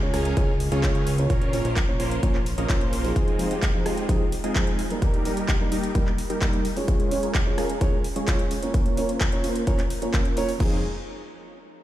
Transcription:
Already playing: C#2
0.01 G#3 C#4 F4 C#5
0.14 C#2 G#3 C#4 F4 G#4 A#4, cross-stick, open hi-hat
0.25 closed hi-hat
0.36 C#2 G#3 C#4 F4 G#4 A#4 C#5, kick, closed hi-hat
0.60 open hi-hat
0.72 C#2 G#3 C#4 F4 G#4 C#5, closed hi-hat
0.83 G#3 C#4 F4 C#5, kick, clap, closed hi-hat
0.95 C#2 G#3 C#4 F4 G#4 C#5, closed hi-hat
1.07 open hi-hat
1.18 A#3 C#4 F4 C#5, closed hi-hat
1.30 A#1 A#3 C#4 F4 A#4 C#5, kick, closed hi-hat
1.42 closed hi-hat
1.53 A#3 C#4 F4 C#5, open hi-hat
1.65 A#1 A#3 C#4 F4 A#4 C5, closed hi-hat
1.76 kick, clap, closed hi-hat
1.87 A#3 C#4 F4 C#5
2.00 A#1 A#3 C#4 F4 A#4 C5, open hi-hat
2.11 closed hi-hat
2.22 A#1 A#3 C#4 F4 A#4 C5 C#5, kick, closed hi-hat
2.35 clap
2.46 open hi-hat
2.58 A#1 A#3 C#4 F4 A#4 D#5, closed hi-hat
2.69 A#1 A#3 C#4 F4 A#4 C5 C#5, kick, clap, closed hi-hat
2.81 closed hi-hat
2.93 open hi-hat
3.04 F3 C4 D#4 G#4, open hi-hat
3.16 G#3 C4 D#4 F4 G#4, kick, closed hi-hat
3.28 closed hi-hat
3.39 F3 C4 D#4 G#4, open hi-hat
3.51 G#3 C4 D#4 F4 G4, closed hi-hat
3.63 kick, clap, closed hi-hat
3.74 F3 C4 D#4 G#4
3.86 G#3 C4 D#4 F4 G4, cross-stick, open hi-hat
3.98 closed hi-hat
4.08 F3 G#3 C4 D#4 F4 G4 G#4, kick, closed hi-hat
4.32 open hi-hat
4.44 G#3 C4 D#4 F4 G#4, closed hi-hat
4.55 F3 C4 D#4 G#4, kick, clap, closed hi-hat
4.67 G#3 C4 D#4 F4 G#4, closed hi-hat
4.79 open hi-hat
4.90 G3 A#3 D#4 A#4, closed hi-hat
5.02 G3 A#3 D#4 G4 A#4, kick, closed hi-hat
5.14 closed hi-hat
5.25 G3 A#3 D#4 A#4, open hi-hat
5.37 G3 A#3 D#4 G4 A#4, closed hi-hat
5.49 kick, clap, closed hi-hat
5.60 G3 A#3 D#4 A#4
5.72 G3 A#3 D#4 G4 A#4, open hi-hat
5.83 closed hi-hat
5.94 G3 A#3 D#4 G4 A#4, kick, closed hi-hat
6.07 clap
6.18 open hi-hat
6.30 G3 A#3 D#4 G4 A#4, closed hi-hat
6.41 G3 A#3 D#4 A#4, kick, clap, closed hi-hat
6.53 G3 A#3 D#4 G4 A#4, closed hi-hat
6.65 open hi-hat
6.76 G#3 C#4 F4 C#5, open hi-hat
6.88 G#3 C#4 F4 G#4 C#5, kick, closed hi-hat
7.00 closed hi-hat
7.11 G#3 C#4 F4 C#5, open hi-hat
7.23 G#3 C#4 F4 G#4 A#4, closed hi-hat
7.35 kick, clap, closed hi-hat
7.46 G#3 C#4 F4 C#5
7.58 G#3 C#4 F4 G#4 A#4, cross-stick, open hi-hat
7.70 closed hi-hat
7.81 G#3 C#4 F4 G#4 A#4 C#5, kick, closed hi-hat
8.04 open hi-hat
8.16 G#3 C#4 F4 G#4 C#5, closed hi-hat
8.27 G#3 C#4 F4 C#5, kick, clap, closed hi-hat
8.39 G#3 C#4 F4 G#4 C#5, closed hi-hat
8.51 open hi-hat
8.62 A#3 C#4 F4 C#5, closed hi-hat
8.74 A#3 C#4 F4 A#4 C#5, kick, closed hi-hat
8.86 closed hi-hat
8.97 A#3 C#4 F4 C#5, open hi-hat
9.09 A#3 C#4 F4 A#4 C5, closed hi-hat
9.21 kick, cross-stick, clap, closed hi-hat
9.32 A#3 C#4 F4 C#5, closed hi-hat
9.44 A#3 C#4 F4 A#4 C5, open hi-hat
9.56 closed hi-hat
9.67 A#3 C#4 F4 A#4 C5 C#5, kick, closed hi-hat
9.79 clap, closed hi-hat
9.90 open hi-hat
10.02 A#3 C#4 F4 A#4 C#5, closed hi-hat
10.14 kick, clap, closed hi-hat
10.25 A#3 C#4 F4 A#4 C#5, closed hi-hat
10.36 A#3 C#4 F4 C#5, open hi-hat
10.49 open hi-hat
10.58 F1 F3 G#3 C4 D#4 F4 G#4, kick, crash

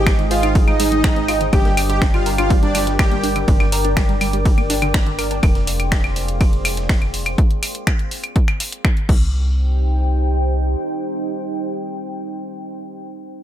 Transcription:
Already playing: G#1 G#3 D#4 G4 G#4 C5 D#5 G5 D#6
0.07 D#4, finger snap, kick, snare, closed hi-hat, ride, claves
0.19 D#3, closed hi-hat
0.31 F4 C5 F5, open hi-hat, ride
0.43 D#4, closed hi-hat, claves
0.55 G#3, kick, closed hi-hat, ride
0.68 G#3 D#4 D#5, closed hi-hat, claves
0.80 G#3 D#4 G#4, snare, open hi-hat, ride
0.92 G#3, closed hi-hat
1.04 G#3, finger snap, kick, snare, closed hi-hat, ride, claves
1.16 C4, closed hi-hat
1.28 F4, open hi-hat, ride, claves
1.41 D#3, closed hi-hat
1.53 G1 G3 D4 G4 A#4 D5 G5 D6, kick, closed hi-hat, ride, claves
1.65 A#3, snare, closed hi-hat
1.77 D4, open hi-hat, ride, claves
1.89 D3 G4 G5, closed hi-hat
2.02 D4, finger snap, kick, snare, closed hi-hat, ride
2.14 D3 F4 F5, snare, closed hi-hat, claves
2.26 A#4, open hi-hat, ride
2.38 D4 F4 F5, closed hi-hat, claves
2.50 G3, kick, closed hi-hat, ride
2.63 G3 D4 D5, closed hi-hat
2.75 G3 D4 G4, snare, open hi-hat, ride, claves
2.87 G3, snare, closed hi-hat
2.99 G3 G4 G5, finger snap, kick, snare, closed hi-hat, ride, claves
3.11 A#3, closed hi-hat
3.23 D4, open hi-hat, ride
3.36 D3, closed hi-hat, claves
3.48 G1 D4, kick, closed hi-hat, ride
3.60 D3, snare, closed hi-hat, claves
3.72 A#4, open hi-hat, ride
3.85 D4, closed hi-hat
3.97 G3, finger snap, kick, snare, closed hi-hat, ride, claves
4.09 G3, closed hi-hat
4.21 G3, open hi-hat, ride, claves
4.33 G3, closed hi-hat
4.46 G3, kick, closed hi-hat, ride
4.58 A#3, closed hi-hat, claves
4.70 D4, snare, open hi-hat, ride
4.82 D3, closed hi-hat, claves
4.94 D4, finger snap, kick, snare, closed hi-hat, ride
5.07 D3, closed hi-hat
5.19 A#4, open hi-hat, ride, claves
5.31 D4, closed hi-hat
5.43 F1 G#4 C5 F5 C6, kick, closed hi-hat, ride, claves
5.55 snare, closed hi-hat
5.67 open hi-hat, ride
5.80 closed hi-hat, claves
5.92 finger snap, kick, snare, closed hi-hat, ride
6.04 snare, closed hi-hat, claves
6.16 open hi-hat, ride
6.28 closed hi-hat
6.41 kick, closed hi-hat, ride, claves
6.53 closed hi-hat
6.65 snare, open hi-hat, ride, claves
6.77 snare, closed hi-hat
6.89 finger snap, kick, snare, closed hi-hat, ride
7.02 closed hi-hat, claves
7.14 open hi-hat, ride
7.26 closed hi-hat, claves
7.38 kick, closed hi-hat
7.51 closed hi-hat
7.63 open hi-hat, claves
7.75 closed hi-hat
7.87 finger snap, kick, closed hi-hat, claves
7.99 closed hi-hat
8.11 open hi-hat
8.24 closed hi-hat, claves
8.36 kick, closed hi-hat
8.48 finger snap, closed hi-hat, claves
8.60 open hi-hat
8.72 closed hi-hat
8.85 finger snap, kick, closed hi-hat, claves
8.97 closed hi-hat
9.09 C2 D#4 G4 C5 G5, kick, crash

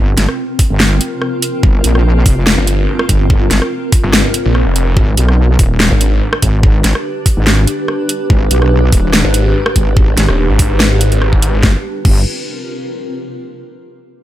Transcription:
Already playing: G1 C4 F4 A#4
0.17 G1, snare, closed hi-hat
0.29 cross-stick
0.59 kick, open hi-hat
0.70 G1
0.80 snare
1.01 closed hi-hat
1.22 cross-stick
1.42 closed hi-hat
1.63 G1, kick
1.84 A#1, closed hi-hat
1.95 cross-stick
2.26 F1, kick, open hi-hat
2.47 snare
2.58 G1
2.67 closed hi-hat
2.99 cross-stick
3.09 G1, kick, closed hi-hat
3.30 kick
3.51 G1, snare, closed hi-hat
3.62 cross-stick
3.92 kick, open hi-hat
4.04 G1
4.13 snare
4.34 closed hi-hat
4.45 A#1
4.55 cross-stick
4.66 F1
4.76 closed hi-hat
4.97 G#1 D4, kick
5.17 B1 B4, closed hi-hat
5.29 cross-stick
5.45 G4
5.59 D#1, kick, open hi-hat
5.80 snare
5.91 G#1
6.01 closed hi-hat
6.33 cross-stick
6.42 G#1, kick, closed hi-hat
6.63 kick
6.84 G#1, snare, closed hi-hat
6.95 cross-stick
7.26 kick, open hi-hat
7.37 G#1
7.47 snare
7.67 closed hi-hat
7.88 cross-stick
8.09 closed hi-hat
8.30 G#1, kick
8.51 B1, closed hi-hat
8.62 cross-stick
8.92 D#1, kick, open hi-hat
9.13 snare
9.24 G#1
9.34 closed hi-hat
9.66 cross-stick
9.76 G#1, kick, closed hi-hat
9.97 kick
10.17 G#1, snare, closed hi-hat
10.29 D#1, cross-stick
10.49 G#1
10.59 kick, open hi-hat
10.80 snare
11.01 closed hi-hat
11.12 G#1, closed hi-hat
11.22 cross-stick
11.33 kick
11.42 closed hi-hat
11.54 G#1
11.63 G1 C4, kick, snare
11.70 F4
11.76 A#4
12.05 G1, kick, crash

